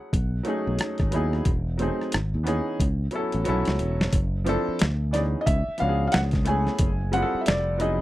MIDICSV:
0, 0, Header, 1, 6, 480
1, 0, Start_track
1, 0, Key_signature, 4, "minor"
1, 0, Tempo, 666667
1, 1050, Time_signature, 4, 2, 24, 8
1, 5770, End_track
2, 0, Start_track
2, 0, Title_t, "Felt piano"
2, 0, Program_c, 0, 0
2, 0, Note_on_c, 0, 78, 87
2, 2457, Note_off_c, 0, 78, 0
2, 3693, Note_on_c, 0, 74, 83
2, 3737, Note_off_c, 0, 74, 0
2, 3895, Note_on_c, 0, 75, 76
2, 3933, Note_off_c, 0, 75, 0
2, 3933, Note_on_c, 0, 76, 96
2, 4176, Note_on_c, 0, 77, 91
2, 4179, Note_off_c, 0, 76, 0
2, 4363, Note_off_c, 0, 77, 0
2, 4374, Note_on_c, 0, 77, 76
2, 4407, Note_on_c, 0, 78, 106
2, 4412, Note_off_c, 0, 77, 0
2, 4462, Note_off_c, 0, 78, 0
2, 4660, Note_on_c, 0, 80, 101
2, 5136, Note_on_c, 0, 78, 103
2, 5149, Note_off_c, 0, 80, 0
2, 5318, Note_off_c, 0, 78, 0
2, 5336, Note_on_c, 0, 76, 69
2, 5373, Note_off_c, 0, 76, 0
2, 5381, Note_on_c, 0, 74, 87
2, 5599, Note_off_c, 0, 74, 0
2, 5626, Note_on_c, 0, 75, 83
2, 5770, Note_off_c, 0, 75, 0
2, 5770, End_track
3, 0, Start_track
3, 0, Title_t, "Grand piano"
3, 0, Program_c, 1, 0
3, 0, Control_c, 1, 64, 127
3, 0, Note_on_c, 1, 54, 68
3, 0, Note_on_c, 1, 57, 62
3, 0, Note_on_c, 1, 61, 65
3, 0, Note_on_c, 1, 64, 64
3, 0, Note_on_c, 1, 68, 78
3, 100, Control_c, 1, 64, 0
3, 101, Note_off_c, 1, 57, 0
3, 103, Note_off_c, 1, 64, 0
3, 104, Note_off_c, 1, 61, 0
3, 105, Note_off_c, 1, 54, 0
3, 106, Note_off_c, 1, 68, 0
3, 245, Control_c, 1, 64, 127
3, 312, Note_on_c, 1, 54, 78
3, 321, Note_on_c, 1, 57, 73
3, 328, Note_on_c, 1, 61, 66
3, 338, Note_on_c, 1, 63, 69
3, 347, Note_on_c, 1, 68, 81
3, 502, Note_off_c, 1, 54, 0
3, 507, Note_off_c, 1, 57, 0
3, 510, Note_off_c, 1, 61, 0
3, 515, Note_off_c, 1, 63, 0
3, 519, Note_off_c, 1, 68, 0
3, 800, Note_on_c, 1, 54, 72
3, 806, Note_on_c, 1, 59, 65
3, 816, Note_on_c, 1, 63, 73
3, 822, Note_on_c, 1, 64, 70
3, 832, Note_on_c, 1, 68, 88
3, 986, Note_off_c, 1, 54, 0
3, 989, Note_off_c, 1, 59, 0
3, 994, Note_off_c, 1, 63, 0
3, 997, Note_off_c, 1, 64, 0
3, 1002, Note_off_c, 1, 68, 0
3, 1058, Control_c, 1, 64, 0
3, 1190, Control_c, 1, 64, 127
3, 1278, Note_on_c, 1, 54, 73
3, 1288, Note_on_c, 1, 57, 63
3, 1295, Note_on_c, 1, 60, 72
3, 1306, Note_on_c, 1, 63, 67
3, 1311, Note_on_c, 1, 68, 80
3, 1465, Note_off_c, 1, 54, 0
3, 1470, Note_off_c, 1, 57, 0
3, 1473, Note_off_c, 1, 60, 0
3, 1479, Note_off_c, 1, 63, 0
3, 1482, Note_off_c, 1, 68, 0
3, 1538, Control_c, 1, 64, 0
3, 1660, Control_c, 1, 64, 127
3, 1753, Note_on_c, 1, 52, 77
3, 1757, Note_on_c, 1, 59, 70
3, 1770, Note_on_c, 1, 61, 75
3, 1776, Note_on_c, 1, 63, 71
3, 1787, Note_on_c, 1, 68, 87
3, 1942, Note_off_c, 1, 52, 0
3, 1945, Note_off_c, 1, 59, 0
3, 1951, Note_off_c, 1, 61, 0
3, 1954, Note_off_c, 1, 63, 0
3, 1959, Note_off_c, 1, 68, 0
3, 2019, Control_c, 1, 64, 0
3, 2163, Control_c, 1, 64, 127
3, 2239, Note_on_c, 1, 54, 77
3, 2246, Note_on_c, 1, 59, 63
3, 2254, Note_on_c, 1, 61, 67
3, 2263, Note_on_c, 1, 64, 67
3, 2272, Note_on_c, 1, 69, 87
3, 2469, Note_off_c, 1, 54, 0
3, 2478, Note_off_c, 1, 59, 0
3, 2480, Note_on_c, 1, 54, 96
3, 2482, Note_off_c, 1, 61, 0
3, 2489, Note_on_c, 1, 59, 75
3, 2492, Note_off_c, 1, 64, 0
3, 2493, Note_on_c, 1, 61, 85
3, 2500, Control_c, 1, 64, 0
3, 2503, Note_off_c, 1, 69, 0
3, 2503, Note_on_c, 1, 64, 86
3, 2514, Note_on_c, 1, 69, 92
3, 2608, Control_c, 1, 64, 127
3, 2838, Note_off_c, 1, 54, 0
3, 2842, Note_off_c, 1, 59, 0
3, 2845, Note_off_c, 1, 61, 0
3, 2850, Note_off_c, 1, 64, 0
3, 2855, Note_off_c, 1, 69, 0
3, 2979, Control_c, 1, 64, 0
3, 3118, Control_c, 1, 64, 127
3, 3200, Note_on_c, 1, 53, 83
3, 3209, Note_on_c, 1, 60, 77
3, 3218, Note_on_c, 1, 62, 72
3, 3225, Note_on_c, 1, 64, 76
3, 3232, Note_on_c, 1, 69, 99
3, 3386, Note_off_c, 1, 53, 0
3, 3390, Note_off_c, 1, 60, 0
3, 3395, Note_off_c, 1, 62, 0
3, 3399, Note_off_c, 1, 64, 0
3, 3402, Note_off_c, 1, 69, 0
3, 3458, Control_c, 1, 64, 0
3, 3577, Control_c, 1, 64, 127
3, 3680, Note_on_c, 1, 52, 60
3, 3689, Note_on_c, 1, 59, 52
3, 3695, Note_on_c, 1, 61, 54
3, 3703, Note_on_c, 1, 63, 58
3, 3713, Note_on_c, 1, 68, 64
3, 3938, Control_c, 1, 64, 0
3, 3982, Note_off_c, 1, 52, 0
3, 3986, Note_off_c, 1, 59, 0
3, 3989, Note_off_c, 1, 61, 0
3, 3993, Note_off_c, 1, 63, 0
3, 3998, Note_off_c, 1, 68, 0
3, 4079, Control_c, 1, 64, 127
3, 4159, Note_on_c, 1, 53, 60
3, 4166, Note_on_c, 1, 59, 54
3, 4174, Note_on_c, 1, 61, 59
3, 4186, Note_on_c, 1, 62, 60
3, 4194, Note_on_c, 1, 66, 57
3, 4237, Note_off_c, 1, 66, 0
3, 4240, Note_on_c, 1, 68, 72
3, 4418, Control_c, 1, 64, 0
3, 4518, Note_off_c, 1, 53, 0
3, 4521, Note_off_c, 1, 59, 0
3, 4525, Note_off_c, 1, 61, 0
3, 4531, Note_off_c, 1, 62, 0
3, 4534, Control_c, 1, 64, 127
3, 4558, Note_off_c, 1, 68, 0
3, 4641, Note_on_c, 1, 57, 72
3, 4647, Note_on_c, 1, 59, 62
3, 4657, Note_on_c, 1, 61, 61
3, 4665, Note_on_c, 1, 64, 62
3, 4676, Note_on_c, 1, 68, 76
3, 4900, Control_c, 1, 64, 0
3, 4942, Note_off_c, 1, 57, 0
3, 4945, Note_off_c, 1, 59, 0
3, 4950, Note_off_c, 1, 61, 0
3, 4954, Note_off_c, 1, 64, 0
3, 4959, Note_off_c, 1, 68, 0
3, 5007, Control_c, 1, 64, 127
3, 5124, Note_on_c, 1, 55, 70
3, 5130, Note_on_c, 1, 60, 63
3, 5140, Note_on_c, 1, 64, 65
3, 5146, Note_on_c, 1, 65, 67
3, 5157, Note_on_c, 1, 68, 60
3, 5199, Note_off_c, 1, 68, 0
3, 5201, Note_on_c, 1, 69, 83
3, 5378, Control_c, 1, 64, 0
3, 5495, Control_c, 1, 64, 127
3, 5597, Note_on_c, 1, 54, 69
3, 5605, Note_on_c, 1, 59, 64
3, 5613, Note_off_c, 1, 64, 0
3, 5615, Note_on_c, 1, 63, 69
3, 5623, Note_on_c, 1, 64, 65
3, 5630, Note_on_c, 1, 68, 76
3, 5770, Note_off_c, 1, 54, 0
3, 5770, Note_off_c, 1, 55, 0
3, 5770, Note_off_c, 1, 59, 0
3, 5770, Note_off_c, 1, 60, 0
3, 5770, Note_off_c, 1, 63, 0
3, 5770, Note_off_c, 1, 64, 0
3, 5770, Note_off_c, 1, 65, 0
3, 5770, Note_off_c, 1, 68, 0
3, 5770, Note_off_c, 1, 69, 0
3, 5770, End_track
4, 0, Start_track
4, 0, Title_t, "Fretless electric bass"
4, 0, Program_c, 2, 35
4, 104, Note_on_c, 2, 35, 81
4, 290, Note_off_c, 2, 35, 0
4, 484, Note_on_c, 2, 35, 76
4, 557, Note_off_c, 2, 35, 0
4, 728, Note_on_c, 2, 32, 77
4, 800, Note_off_c, 2, 32, 0
4, 820, Note_on_c, 2, 39, 89
4, 1007, Note_off_c, 2, 39, 0
4, 1058, Note_on_c, 2, 28, 102
4, 1359, Note_off_c, 2, 28, 0
4, 1545, Note_on_c, 2, 32, 87
4, 1685, Note_on_c, 2, 39, 70
4, 1696, Note_off_c, 2, 32, 0
4, 1871, Note_off_c, 2, 39, 0
4, 2021, Note_on_c, 2, 37, 89
4, 2208, Note_off_c, 2, 37, 0
4, 2407, Note_on_c, 2, 33, 86
4, 2479, Note_off_c, 2, 33, 0
4, 2509, Note_on_c, 2, 35, 98
4, 2615, Note_off_c, 2, 35, 0
4, 2649, Note_on_c, 2, 37, 74
4, 2720, Note_off_c, 2, 37, 0
4, 2743, Note_on_c, 2, 28, 88
4, 2929, Note_off_c, 2, 28, 0
4, 2981, Note_on_c, 2, 30, 107
4, 3281, Note_off_c, 2, 30, 0
4, 3471, Note_on_c, 2, 38, 87
4, 3845, Note_off_c, 2, 38, 0
4, 3945, Note_on_c, 2, 37, 99
4, 4052, Note_off_c, 2, 37, 0
4, 4188, Note_on_c, 2, 37, 85
4, 4372, Note_off_c, 2, 37, 0
4, 4428, Note_on_c, 2, 37, 106
4, 4803, Note_off_c, 2, 37, 0
4, 4902, Note_on_c, 2, 30, 111
4, 5202, Note_off_c, 2, 30, 0
4, 5385, Note_on_c, 2, 29, 95
4, 5762, Note_off_c, 2, 29, 0
4, 5770, End_track
5, 0, Start_track
5, 0, Title_t, "Muted fretless electric bass strokes"
5, 3372, Note_on_c, 9, 29, 42
5, 3444, Note_off_c, 9, 29, 0
5, 4093, Note_on_c, 9, 29, 47
5, 4165, Note_off_c, 9, 29, 0
5, 5289, Note_on_c, 9, 29, 49
5, 5361, Note_off_c, 9, 29, 0
5, 5770, End_track
6, 0, Start_track
6, 0, Title_t, "Drums"
6, 94, Note_on_c, 9, 36, 98
6, 98, Note_on_c, 9, 42, 72
6, 166, Note_off_c, 9, 36, 0
6, 170, Note_off_c, 9, 42, 0
6, 322, Note_on_c, 9, 42, 56
6, 394, Note_off_c, 9, 42, 0
6, 566, Note_on_c, 9, 42, 65
6, 581, Note_on_c, 9, 37, 98
6, 638, Note_off_c, 9, 42, 0
6, 653, Note_off_c, 9, 37, 0
6, 705, Note_on_c, 9, 42, 37
6, 717, Note_on_c, 9, 36, 86
6, 718, Note_on_c, 9, 37, 29
6, 777, Note_off_c, 9, 42, 0
6, 789, Note_off_c, 9, 36, 0
6, 790, Note_off_c, 9, 37, 0
6, 806, Note_on_c, 9, 42, 59
6, 878, Note_off_c, 9, 42, 0
6, 959, Note_on_c, 9, 37, 30
6, 1031, Note_off_c, 9, 37, 0
6, 1045, Note_on_c, 9, 42, 74
6, 1049, Note_on_c, 9, 36, 107
6, 1117, Note_off_c, 9, 42, 0
6, 1121, Note_off_c, 9, 36, 0
6, 1289, Note_on_c, 9, 42, 63
6, 1361, Note_off_c, 9, 42, 0
6, 1451, Note_on_c, 9, 37, 32
6, 1523, Note_off_c, 9, 37, 0
6, 1527, Note_on_c, 9, 42, 74
6, 1544, Note_on_c, 9, 37, 107
6, 1599, Note_off_c, 9, 42, 0
6, 1616, Note_off_c, 9, 37, 0
6, 1776, Note_on_c, 9, 42, 76
6, 1780, Note_on_c, 9, 37, 38
6, 1848, Note_off_c, 9, 42, 0
6, 1852, Note_off_c, 9, 37, 0
6, 2014, Note_on_c, 9, 36, 97
6, 2019, Note_on_c, 9, 42, 76
6, 2086, Note_off_c, 9, 36, 0
6, 2091, Note_off_c, 9, 42, 0
6, 2239, Note_on_c, 9, 42, 57
6, 2311, Note_off_c, 9, 42, 0
6, 2393, Note_on_c, 9, 42, 48
6, 2465, Note_off_c, 9, 42, 0
6, 2485, Note_on_c, 9, 42, 64
6, 2557, Note_off_c, 9, 42, 0
6, 2630, Note_on_c, 9, 42, 36
6, 2647, Note_on_c, 9, 38, 62
6, 2702, Note_off_c, 9, 42, 0
6, 2719, Note_off_c, 9, 38, 0
6, 2730, Note_on_c, 9, 42, 66
6, 2802, Note_off_c, 9, 42, 0
6, 2888, Note_on_c, 9, 38, 80
6, 2960, Note_off_c, 9, 38, 0
6, 2970, Note_on_c, 9, 42, 84
6, 2972, Note_on_c, 9, 36, 103
6, 3042, Note_off_c, 9, 42, 0
6, 3044, Note_off_c, 9, 36, 0
6, 3215, Note_on_c, 9, 42, 70
6, 3287, Note_off_c, 9, 42, 0
6, 3450, Note_on_c, 9, 42, 75
6, 3467, Note_on_c, 9, 38, 102
6, 3522, Note_off_c, 9, 42, 0
6, 3539, Note_off_c, 9, 38, 0
6, 3699, Note_on_c, 9, 42, 84
6, 3703, Note_on_c, 9, 38, 40
6, 3771, Note_off_c, 9, 42, 0
6, 3775, Note_off_c, 9, 38, 0
6, 3936, Note_on_c, 9, 36, 99
6, 3939, Note_on_c, 9, 42, 79
6, 4008, Note_off_c, 9, 36, 0
6, 4011, Note_off_c, 9, 42, 0
6, 4161, Note_on_c, 9, 42, 56
6, 4233, Note_off_c, 9, 42, 0
6, 4406, Note_on_c, 9, 42, 73
6, 4421, Note_on_c, 9, 38, 104
6, 4478, Note_off_c, 9, 42, 0
6, 4493, Note_off_c, 9, 38, 0
6, 4545, Note_on_c, 9, 42, 44
6, 4559, Note_on_c, 9, 36, 95
6, 4559, Note_on_c, 9, 38, 35
6, 4617, Note_off_c, 9, 42, 0
6, 4631, Note_off_c, 9, 36, 0
6, 4631, Note_off_c, 9, 38, 0
6, 4648, Note_on_c, 9, 42, 64
6, 4720, Note_off_c, 9, 42, 0
6, 4800, Note_on_c, 9, 38, 37
6, 4872, Note_off_c, 9, 38, 0
6, 4886, Note_on_c, 9, 42, 86
6, 4892, Note_on_c, 9, 36, 111
6, 4958, Note_off_c, 9, 42, 0
6, 4964, Note_off_c, 9, 36, 0
6, 5133, Note_on_c, 9, 42, 66
6, 5205, Note_off_c, 9, 42, 0
6, 5371, Note_on_c, 9, 42, 81
6, 5388, Note_on_c, 9, 38, 114
6, 5443, Note_off_c, 9, 42, 0
6, 5460, Note_off_c, 9, 38, 0
6, 5615, Note_on_c, 9, 42, 85
6, 5687, Note_off_c, 9, 42, 0
6, 5770, End_track
0, 0, End_of_file